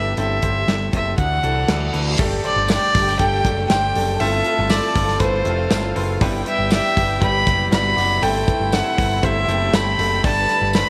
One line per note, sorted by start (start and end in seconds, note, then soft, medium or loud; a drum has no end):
0.00 0.13 G1 medium
0.00 0.18 G2 medium
0.00 0.13 F3 medium
0.00 0.15 G3 medium
0.00 0.15 B3 medium
0.00 0.19 B3 medium
0.00 0.18 E4 medium
0.00 0.18 G4 medium
0.00 1.15 G4 medium
0.00 0.18 A4 loud
0.00 0.19 B4 loud
0.00 0.19 D5 medium
0.00 0.17 E5 medium
0.17 0.38 G1 medium
0.17 0.89 G2 medium
0.17 2.16 E3 medium
0.17 2.16 A3 medium
0.17 1.17 C4 medium
0.17 0.36 C4 medium
0.17 0.36 E4 medium
0.17 0.36 G4 medium
0.17 0.36 A4 medium
0.17 0.90 E5 medium
0.17 closed hi-hat medium
0.42 0.63 G1 medium
0.42 0.61 C4 medium
0.42 0.61 E4 medium
0.42 0.61 G4 medium
0.42 0.61 C5 medium
0.42 kick medium
0.42 closed hi-hat medium
0.67 0.88 G1 medium
0.67 0.86 C4 medium
0.67 0.86 E4 medium
0.67 0.86 G4 medium
0.67 0.86 A4 medium
0.67 snare medium
0.67 closed hi-hat medium
0.93 1.14 F#1 medium
0.93 1.11 C4 medium
0.93 1.12 E4 medium
0.93 1.11 G4 medium
0.93 1.12 A4 medium
0.93 1.17 E5 medium
0.93 kick medium
0.93 closed hi-hat medium
1.17 1.39 D2 loud
1.17 1.90 D3 medium
1.17 2.17 D4 medium
1.17 1.37 D4 medium
1.17 1.37 E4 medium
1.17 2.17 F#4 medium
1.17 1.37 F#4 medium
1.17 1.37 A4 medium
1.17 1.90 F#5 medium
1.17 kick medium
1.17 closed hi-hat medium
1.17 reverse cymbal medium
1.43 1.64 C2 medium
1.43 1.62 D4 medium
1.43 1.62 E4 medium
1.43 1.62 F#4 medium
1.43 1.62 A4 loud
1.43 closed hi-hat medium
1.68 1.89 D2 medium
1.68 1.87 D4 medium
1.68 1.87 E4 medium
1.68 1.87 F#4 medium
1.68 1.87 A4 medium
1.68 snare loud
1.68 closed hi-hat medium
1.93 2.14 D2 medium
1.93 2.12 D4 medium
1.93 2.12 E4 medium
1.93 2.12 F#4 medium
1.93 2.12 B4 medium
1.93 closed hi-hat medium
2.19 2.40 G1 loud
2.19 2.91 G2 medium
2.19 4.18 D3 medium
2.19 2.37 G3 loud
2.19 4.18 G3 medium
2.19 2.38 A3 loud
2.19 6.17 A3 medium
2.19 2.38 D4 loud
2.19 2.38 G4 loud
2.19 4.16 G4 medium
2.19 4.18 G4 medium
2.19 2.38 A4 loud
2.19 4.16 G5 loud
2.19 kick loud
2.19 crash loud
2.19 impact medium
2.44 2.63 G3 medium
2.44 2.62 A3 medium
2.44 2.63 D4 medium
2.44 2.63 G4 medium
2.44 2.63 C5 medium
2.44 2.68 D5 medium
2.44 hi-hat pedal medium
2.44 open hi-hat medium
2.56 2.77 G1 medium
2.68 2.88 G3 medium
2.68 2.88 A3 medium
2.68 2.88 D4 medium
2.68 2.88 G4 medium
2.68 2.88 A4 medium
2.68 3.16 D5 loud
2.68 snare loud
2.68 hi-hat pedal medium
2.68 open hi-hat medium
2.68 tambourine medium
2.94 3.15 G1 loud
2.94 3.13 G3 medium
2.94 3.13 A3 medium
2.94 3.13 D4 medium
2.94 3.13 G4 medium
2.94 3.13 A4 medium
2.94 kick loud
2.94 hi-hat pedal medium
2.94 open hi-hat medium
3.07 snare soft
3.19 3.40 G1 loud
3.19 3.38 G3 loud
3.19 3.38 A3 medium
3.19 3.38 D4 medium
3.19 3.38 G4 medium
3.19 3.38 A4 loud
3.19 3.66 G5 loud
3.19 kick medium
3.19 hi-hat pedal medium
3.19 open hi-hat medium
3.45 3.65 F#1 medium
3.45 3.64 G3 medium
3.45 3.64 A3 medium
3.45 3.64 D4 medium
3.45 3.64 G4 medium
3.45 3.64 A4 medium
3.45 kick medium
3.45 hi-hat pedal medium
3.45 open hi-hat medium
3.70 3.91 G1 medium
3.70 3.88 G3 medium
3.70 3.89 A3 medium
3.70 3.89 D4 medium
3.70 3.89 G4 medium
3.70 3.89 C5 medium
3.70 4.22 G5 loud
3.70 snare loud
3.70 hi-hat pedal medium
3.70 open hi-hat medium
3.70 tambourine medium
3.95 4.16 F#1 medium
3.95 4.14 G3 medium
3.95 4.14 A3 medium
3.95 4.14 D4 medium
3.95 4.14 G4 medium
3.95 4.14 A4 medium
3.95 hi-hat pedal medium
3.95 open hi-hat medium
4.20 4.41 G1 loud
4.20 4.92 G2 medium
4.20 10.20 C3 medium
4.20 4.39 A3 loud
4.20 6.19 C4 medium
4.20 4.39 C4 medium
4.20 4.39 E4 medium
4.20 6.19 F4 medium
4.20 4.39 F4 medium
4.20 5.43 A4 loud
4.20 4.39 A4 loud
4.20 4.71 E5 medium
4.20 5.43 A5 loud
4.20 hi-hat pedal medium
4.20 open hi-hat medium
4.44 4.64 A3 medium
4.44 4.64 C4 medium
4.44 4.64 E4 medium
4.44 4.64 F4 medium
4.44 4.64 A4 medium
4.44 hi-hat pedal medium
4.44 open hi-hat medium
4.59 4.79 G1 medium
4.69 4.89 A3 medium
4.69 4.89 C4 medium
4.69 4.89 E4 medium
4.69 4.89 F4 medium
4.69 4.89 A4 medium
4.69 5.20 D5 medium
4.69 snare loud
4.69 hi-hat pedal medium
4.69 open hi-hat medium
4.69 tambourine medium
4.95 5.16 G1 medium
4.95 5.14 A3 medium
4.95 5.14 C4 medium
4.95 5.14 E4 medium
4.95 5.14 F4 medium
4.95 5.14 A4 medium
4.95 kick loud
4.95 hi-hat pedal medium
4.95 open hi-hat medium
5.08 snare soft
5.19 5.41 G1 loud
5.19 5.39 A3 loud
5.19 5.39 C4 medium
5.19 5.39 E4 medium
5.19 5.39 F4 medium
5.19 5.39 B4 loud
5.19 5.92 C5 medium
5.19 kick medium
5.19 hi-hat pedal medium
5.19 open hi-hat medium
5.45 5.66 F1 medium
5.45 5.64 A3 medium
5.45 5.64 C4 medium
5.45 5.64 E4 medium
5.45 5.64 F4 medium
5.45 6.20 F4 medium
5.45 5.64 A4 loud
5.45 6.20 F5 medium
5.45 hi-hat pedal medium
5.45 open hi-hat medium
5.70 5.92 G1 loud
5.70 5.89 A3 medium
5.70 5.89 C4 medium
5.70 5.89 E4 medium
5.70 5.89 F4 medium
5.70 5.89 A4 medium
5.70 snare loud
5.70 hi-hat pedal medium
5.70 open hi-hat medium
5.70 tambourine medium
5.95 6.17 F#1 loud
5.95 6.14 A3 medium
5.95 6.15 C4 medium
5.95 6.14 E4 medium
5.95 6.15 F4 medium
5.95 6.15 B4 loud
5.95 hi-hat pedal medium
5.95 open hi-hat medium
6.21 6.42 G1 loud
6.21 6.93 G2 medium
6.21 6.40 G3 loud
6.21 8.21 G3 medium
6.21 6.40 B3 loud
6.21 8.21 B3 medium
6.21 6.40 E4 loud
6.21 10.89 E4 medium
6.21 7.69 G4 loud
6.21 6.40 G4 loud
6.21 6.40 B4 loud
6.21 7.69 G5 loud
6.21 kick loud
6.21 hi-hat pedal medium
6.21 open hi-hat medium
6.45 6.64 G3 medium
6.45 6.64 B3 medium
6.45 6.65 E4 medium
6.45 6.65 G4 medium
6.45 6.65 B4 medium
6.45 6.71 E5 medium
6.45 hi-hat pedal medium
6.45 open hi-hat medium
6.58 6.79 G1 medium
6.71 6.90 G3 medium
6.71 6.90 B3 medium
6.71 6.90 E4 medium
6.71 6.90 G4 medium
6.71 6.90 D5 medium
6.71 7.19 E5 loud
6.71 snare loud
6.71 hi-hat pedal medium
6.71 open hi-hat medium
6.71 tambourine medium
6.97 7.18 G1 medium
6.97 7.15 G3 medium
6.97 7.15 B3 medium
6.97 7.16 E4 medium
6.97 7.16 G4 medium
6.97 7.16 B4 medium
6.97 kick loud
6.97 hi-hat pedal medium
6.97 open hi-hat medium
7.21 7.42 G1 loud
7.21 7.40 G3 loud
7.21 7.40 B3 medium
7.21 7.40 E4 medium
7.21 7.40 G4 loud
7.21 7.40 B4 loud
7.21 7.69 B5 loud
7.21 kick medium
7.21 hi-hat pedal medium
7.21 open hi-hat medium
7.47 7.68 F#1 medium
7.47 7.66 G3 medium
7.47 7.65 B3 medium
7.47 7.66 E4 medium
7.47 7.66 G4 medium
7.47 7.66 B4 medium
7.47 kick loud
7.47 hi-hat pedal medium
7.47 open hi-hat medium
7.71 7.93 G1 loud
7.71 7.91 G3 medium
7.71 7.90 B3 medium
7.71 7.91 E4 medium
7.71 8.21 F#4 medium
7.71 7.91 G4 medium
7.71 7.91 D5 medium
7.71 8.21 F#5 medium
7.71 8.25 B5 loud
7.71 snare loud
7.71 hi-hat pedal medium
7.71 open hi-hat medium
7.71 tambourine medium
7.96 8.18 F#1 medium
7.96 8.16 G3 medium
7.96 8.16 B3 medium
7.96 8.16 E4 medium
7.96 8.16 G4 medium
7.96 8.16 D5 medium
7.96 hi-hat pedal medium
7.96 open hi-hat medium
8.22 8.43 G1 loud
8.22 8.94 G2 medium
8.22 8.41 A3 loud
8.22 10.89 A3 medium
8.22 8.41 C4 medium
8.22 10.22 C4 medium
8.22 9.46 E4 medium
8.22 8.41 E4 medium
8.22 8.41 G4 medium
8.22 8.41 A4 loud
8.22 9.45 E5 loud
8.22 8.76 G5 loud
8.22 hi-hat pedal medium
8.22 open hi-hat medium
8.47 8.66 A3 medium
8.47 8.66 C4 medium
8.47 8.66 E4 medium
8.47 8.66 G4 medium
8.47 8.66 B4 medium
8.47 kick medium
8.47 hi-hat pedal medium
8.47 open hi-hat medium
8.60 8.81 G1 medium
8.72 8.91 A3 medium
8.72 8.91 C4 medium
8.72 8.92 E4 medium
8.72 8.91 G4 medium
8.72 8.92 A4 medium
8.72 9.26 F#5 medium
8.72 snare loud
8.72 hi-hat pedal medium
8.72 open hi-hat medium
8.72 tambourine medium
8.97 9.19 G1 medium
8.97 9.16 A3 medium
8.97 9.16 C4 medium
8.97 9.16 E4 medium
8.97 9.17 G4 medium
8.97 9.17 B4 medium
8.97 kick loud
8.97 hi-hat pedal medium
8.97 open hi-hat medium
9.22 9.44 G1 loud
9.22 9.41 A3 medium
9.22 9.42 C4 medium
9.22 9.42 E4 loud
9.22 9.42 G4 loud
9.22 9.42 C5 loud
9.22 9.76 E5 medium
9.22 kick medium
9.22 hi-hat pedal medium
9.22 open hi-hat medium
9.48 9.69 F#1 medium
9.48 9.67 A3 medium
9.48 9.67 C4 medium
9.48 9.67 E4 medium
9.48 9.67 G4 medium
9.48 10.23 G4 medium
9.48 9.67 A4 medium
9.48 10.22 G5 medium
9.48 hi-hat pedal medium
9.48 open hi-hat medium
9.73 9.94 G1 medium
9.73 9.92 A3 medium
9.73 9.93 C4 medium
9.73 9.93 E4 medium
9.73 9.93 G4 medium
9.73 9.93 A4 medium
9.73 10.24 B5 medium
9.73 snare loud
9.73 hi-hat pedal medium
9.73 open hi-hat medium
9.73 tambourine medium
9.99 10.19 F#1 medium
9.99 10.18 A3 medium
9.99 10.18 C4 medium
9.99 10.18 E4 medium
9.99 10.18 G4 medium
9.99 10.18 A4 medium
9.99 hi-hat pedal medium
9.99 open hi-hat medium
10.23 10.45 G1 loud
10.23 10.89 G2 medium
10.23 10.89 D3 medium
10.23 10.89 G3 medium
10.23 10.43 G3 medium
10.23 10.43 A3 medium
10.23 10.43 D4 loud
10.23 10.43 G4 loud
10.23 10.43 A4 loud
10.23 10.89 B4 medium
10.23 10.71 A5 loud
10.23 10.89 B5 loud
10.23 kick loud
10.23 hi-hat pedal medium
10.23 open hi-hat medium
10.49 10.68 G3 medium
10.49 10.68 A3 medium
10.49 10.68 D4 medium
10.49 10.68 G4 medium
10.49 10.68 A4 medium
10.49 hi-hat pedal medium
10.49 open hi-hat medium
10.61 10.82 G1 medium
10.73 10.89 G3 medium
10.73 10.89 A3 medium
10.73 10.89 D4 medium
10.73 10.89 G4 medium
10.73 10.89 C5 medium
10.73 10.89 B5 loud
10.73 snare loud
10.73 hi-hat pedal medium
10.73 open hi-hat medium
10.73 tambourine medium